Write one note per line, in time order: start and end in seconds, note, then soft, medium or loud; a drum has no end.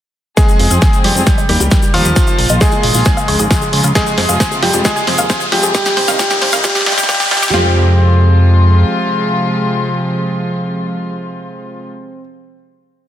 0.37 0.53 F3 medium
0.37 0.95 G#3 medium
0.37 0.53 G#3 medium
0.37 0.53 C4 medium
0.37 0.40 F4 medium
0.37 0.95 G#4 loud
0.37 0.53 G#4 medium
0.37 kick loud
0.37 snare soft
0.37 closed hi-hat medium
0.37 riser medium
0.37 shaker medium
0.48 0.52 G#4 medium
0.48 closed hi-hat soft
0.48 shaker soft
0.60 0.68 F2 medium
0.60 0.64 C5 medium
0.60 open hi-hat loud
0.71 0.79 F2 medium
0.71 0.86 F3 medium
0.71 0.86 G#3 medium
0.71 0.86 C4 medium
0.71 0.86 G#4 medium
0.71 0.73 F5 loud
0.71 closed hi-hat medium
0.71 shaker medium
0.82 kick loud
0.82 snare soft
0.82 closed hi-hat medium
0.82 shaker medium
0.93 1.09 F3 medium
0.93 1.09 G#3 medium
0.93 1.09 C4 medium
0.93 0.96 G#4 medium
0.93 1.09 G#4 medium
0.93 closed hi-hat soft
0.93 shaker soft
1.04 1.12 F2 medium
1.04 1.47 G3 medium
1.04 1.10 F4 medium
1.04 1.47 G4 medium
1.04 open hi-hat loud
1.15 1.24 F2 medium
1.15 1.31 F3 medium
1.15 1.31 G#3 medium
1.15 1.31 C4 medium
1.15 1.19 G#4 medium
1.15 1.31 G#4 medium
1.15 closed hi-hat soft
1.15 shaker medium
1.26 1.29 A#4 medium
1.26 kick loud
1.26 snare medium
1.26 closed hi-hat medium
1.26 shaker medium
1.38 1.42 D#5 loud
1.38 closed hi-hat soft
1.38 shaker soft
1.49 1.57 D#2 loud
1.49 1.65 D#3 medium
1.49 1.92 G3 medium
1.49 1.65 G3 medium
1.49 1.65 A#3 medium
1.49 1.92 G4 medium
1.49 1.65 G4 medium
1.49 1.55 A#4 loud
1.49 open hi-hat loud
1.60 1.68 C#2 medium
1.60 1.63 G4 loud
1.60 closed hi-hat medium
1.60 shaker medium
1.71 1.87 D#3 medium
1.71 1.87 G3 medium
1.71 1.87 A#3 medium
1.71 1.74 D#4 medium
1.71 1.87 G4 medium
1.71 kick loud
1.71 snare medium
1.71 closed hi-hat medium
1.71 shaker medium
1.82 1.85 G4 medium
1.82 closed hi-hat soft
1.82 shaker soft
1.94 2.02 D#2 loud
1.94 2.10 D#3 medium
1.94 2.52 F3 medium
1.94 2.10 G3 medium
1.94 2.10 A#3 medium
1.94 2.52 F4 loud
1.94 2.10 G4 medium
1.94 2.00 A#4 medium
1.94 open hi-hat loud
2.05 2.13 D#2 medium
2.05 2.07 D#5 medium
2.05 closed hi-hat medium
2.05 shaker medium
2.16 2.32 D#3 medium
2.16 2.32 F3 medium
2.16 2.32 A#3 medium
2.16 2.19 D#4 medium
2.16 2.32 F4 medium
2.16 kick loud
2.16 snare medium
2.16 closed hi-hat medium
2.16 shaker medium
2.27 2.31 F4 medium
2.27 closed hi-hat soft
2.27 shaker soft
2.39 2.47 A#1 medium
2.39 2.43 A#4 medium
2.39 open hi-hat loud
2.49 2.58 A#1 medium
2.49 2.66 D#3 medium
2.49 2.66 F3 medium
2.49 2.66 A#3 medium
2.49 2.66 F4 medium
2.49 2.52 D#5 loud
2.49 closed hi-hat medium
2.49 shaker medium
2.61 3.86 G#3 medium
2.61 3.86 G#4 medium
2.61 kick loud
2.61 snare medium
2.61 closed hi-hat medium
2.61 shaker medium
2.71 2.88 D#3 medium
2.71 2.88 F3 medium
2.71 2.88 A#3 medium
2.71 2.75 F4 medium
2.71 2.88 F4 medium
2.71 closed hi-hat soft
2.71 shaker soft
2.83 2.91 A#1 medium
2.83 2.89 D#4 medium
2.83 open hi-hat loud
2.94 3.03 A#1 medium
2.94 3.10 D#3 medium
2.94 3.10 F3 medium
2.94 3.10 A#3 medium
2.94 3.10 F4 medium
2.94 2.99 F4 medium
2.94 open hi-hat medium
2.94 shaker medium
3.05 3.08 C#5 medium
3.05 kick loud
3.05 snare medium
3.05 closed hi-hat medium
3.05 shaker medium
3.17 3.21 F5 loud
3.17 closed hi-hat soft
3.17 shaker soft
3.28 3.36 C#2 loud
3.28 3.44 C#3 medium
3.28 3.44 F3 medium
3.28 3.44 G#3 medium
3.28 3.44 F4 medium
3.28 3.34 C#5 loud
3.28 open hi-hat loud
3.39 3.47 G#1 medium
3.39 3.42 G#4 loud
3.39 closed hi-hat medium
3.39 shaker medium
3.51 3.66 C#3 medium
3.51 3.66 F3 medium
3.51 3.66 G#3 medium
3.51 3.53 F4 medium
3.51 3.66 F4 medium
3.51 kick loud
3.51 snare medium
3.51 closed hi-hat medium
3.51 shaker medium
3.62 3.64 G#4 medium
3.62 closed hi-hat soft
3.62 shaker soft
3.73 3.81 C#2 medium
3.73 3.89 C#3 medium
3.73 3.89 F3 medium
3.73 3.89 G#3 medium
3.73 3.89 F4 medium
3.73 3.79 C#5 medium
3.73 open hi-hat loud
3.84 3.92 C#2 medium
3.84 3.87 F5 medium
3.84 closed hi-hat medium
3.84 shaker medium
3.95 4.11 C3 medium
3.95 4.11 F3 medium
3.95 4.11 G#3 medium
3.95 4.54 G#3 medium
3.95 3.98 F4 medium
3.95 4.11 F4 medium
3.95 4.54 G#4 medium
3.95 kick loud
3.95 snare medium
3.95 closed hi-hat medium
3.95 shaker medium
4.06 4.11 G#4 medium
4.06 closed hi-hat soft
4.06 shaker soft
4.18 4.26 F2 loud
4.18 4.22 C5 medium
4.18 snare medium
4.18 open hi-hat loud
4.29 4.37 F2 medium
4.29 4.45 C3 medium
4.29 4.45 F3 medium
4.29 4.45 G#3 medium
4.29 4.45 F4 medium
4.29 4.31 F5 medium
4.29 closed hi-hat soft
4.29 shaker medium
4.40 4.43 C5 medium
4.40 kick loud
4.40 snare medium
4.40 closed hi-hat medium
4.40 shaker medium
4.51 4.67 C3 medium
4.51 4.67 F3 medium
4.51 4.67 G#3 medium
4.51 4.67 F4 medium
4.51 4.54 G#4 medium
4.51 closed hi-hat soft
4.51 shaker soft
4.63 4.71 F2 medium
4.63 4.83 G3 medium
4.63 4.69 F4 medium
4.63 4.83 G4 medium
4.63 snare medium
4.63 open hi-hat loud
4.73 4.82 F2 medium
4.73 4.89 C3 loud
4.73 4.89 F3 medium
4.73 4.89 G#3 medium
4.73 4.89 F4 medium
4.73 4.78 G#4 medium
4.73 closed hi-hat soft
4.73 shaker medium
4.85 5.43 G#3 medium
4.85 4.87 F4 medium
4.85 5.43 G#4 medium
4.85 kick loud
4.85 snare medium
4.85 closed hi-hat medium
4.85 shaker medium
4.96 5.00 G#4 loud
4.96 closed hi-hat soft
4.96 shaker soft
5.07 5.15 F2 medium
5.07 5.23 C3 medium
5.07 5.23 F3 medium
5.07 5.23 G#3 medium
5.07 5.23 F4 medium
5.07 5.11 C5 medium
5.07 snare medium
5.07 open hi-hat loud
5.18 5.27 D#2 medium
5.18 5.21 F5 loud
5.18 closed hi-hat medium
5.18 shaker medium
5.30 5.45 C3 medium
5.30 5.45 F3 medium
5.30 5.45 G#3 medium
5.30 5.45 F4 medium
5.30 5.32 C5 medium
5.30 kick loud
5.30 snare medium
5.30 closed hi-hat medium
5.30 shaker medium
5.40 5.43 G#4 medium
5.40 closed hi-hat soft
5.40 shaker soft
5.52 5.60 F2 loud
5.52 5.68 C3 medium
5.52 5.68 F3 loud
5.52 5.73 G3 medium
5.52 5.68 G#3 medium
5.52 5.58 F4 medium
5.52 5.68 F4 medium
5.52 5.73 G4 medium
5.52 snare medium
5.52 open hi-hat loud
5.63 5.71 F2 medium
5.63 5.67 G#4 medium
5.63 shaker medium
5.74 5.90 C3 medium
5.74 5.90 D#3 medium
5.74 6.17 G3 medium
5.74 5.90 G3 medium
5.74 5.90 D#4 medium
5.74 5.77 F4 medium
5.74 6.17 G4 loud
5.74 kick loud
5.74 snare medium
5.74 closed hi-hat medium
5.74 shaker medium
5.86 5.90 G4 loud
5.86 snare medium
5.86 closed hi-hat soft
5.86 shaker soft
5.97 6.05 C2 loud
5.97 6.01 C5 medium
5.97 snare medium
5.97 open hi-hat loud
6.08 6.16 C2 medium
6.08 6.24 C3 medium
6.08 6.24 D#3 medium
6.08 6.24 G3 medium
6.08 6.24 D#4 medium
6.08 6.10 F5 loud
6.08 snare medium
6.08 closed hi-hat medium
6.08 shaker medium
6.19 6.62 G3 medium
6.19 6.22 F4 medium
6.19 6.62 G4 loud
6.19 kick loud
6.19 snare loud
6.19 closed hi-hat medium
6.19 shaker medium
6.30 6.46 C3 medium
6.30 6.46 D#3 medium
6.30 6.46 G3 medium
6.30 6.46 D#4 medium
6.30 6.34 G4 loud
6.30 snare medium
6.30 closed hi-hat soft
6.30 shaker soft
6.42 6.50 C2 medium
6.42 6.46 C5 medium
6.42 snare loud
6.42 open hi-hat loud
6.52 6.61 C2 medium
6.52 6.68 C3 medium
6.52 6.68 D#3 medium
6.52 6.68 G3 medium
6.52 6.68 D#4 loud
6.52 6.55 F5 loud
6.52 snare medium
6.52 open hi-hat medium
6.52 shaker medium
6.64 6.85 G3 medium
6.64 6.66 F4 medium
6.64 6.85 G4 loud
6.64 kick loud
6.64 snare loud
6.64 closed hi-hat medium
6.64 shaker medium
6.70 snare medium
6.75 6.79 G4 loud
6.75 snare medium
6.75 closed hi-hat soft
6.75 shaker soft
6.81 snare medium
6.86 6.94 C2 loud
6.86 7.02 C3 medium
6.86 7.02 D#3 medium
6.86 7.02 G3 medium
6.86 7.07 G3 medium
6.86 7.02 D#4 medium
6.86 6.89 F4 medium
6.86 7.07 G4 loud
6.86 snare loud
6.86 open hi-hat loud
6.92 snare medium
6.98 7.06 A#1 medium
6.98 7.02 G4 loud
6.98 snare medium
6.98 closed hi-hat medium
6.98 shaker medium
7.03 snare loud
7.09 7.24 C3 medium
7.09 7.24 D#3 medium
7.09 7.24 G3 medium
7.09 7.29 G3 medium
7.09 7.24 D#4 medium
7.09 7.11 F4 medium
7.09 7.29 G4 loud
7.09 kick loud
7.09 snare loud
7.09 closed hi-hat medium
7.09 shaker medium
7.14 snare loud
7.20 7.24 G4 loud
7.20 snare loud
7.20 shaker soft
7.26 snare medium
7.31 7.39 C2 loud
7.31 7.47 C3 medium
7.31 7.47 D#3 medium
7.31 7.52 G3 medium
7.31 7.47 G3 medium
7.31 7.47 D#4 medium
7.31 7.34 F4 medium
7.31 7.52 G4 loud
7.31 snare loud
7.31 open hi-hat loud
7.37 snare loud
7.42 7.50 C2 medium
7.42 7.46 G4 loud
7.42 snare loud
7.42 shaker medium
7.48 snare loud
7.54 8.84 F2 loud
7.54 11.88 C3 medium
7.54 11.88 F3 medium
7.54 11.88 G#3 medium
7.54 12.20 C4 medium
7.54 11.88 F4 medium
7.54 7.75 F4 medium
7.54 snare loud